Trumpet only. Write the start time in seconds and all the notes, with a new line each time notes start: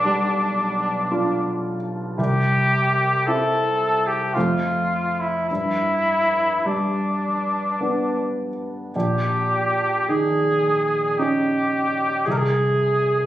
Already playing: D4
2.18 G4
3.26 A4
4.07 G4
4.35 F4
5.20 E4
5.49 E4
6.66 D4
8.94 G4
10.08 G#4
11.19 G4
12.25 G#4
12.31 A#4
12.38 G#4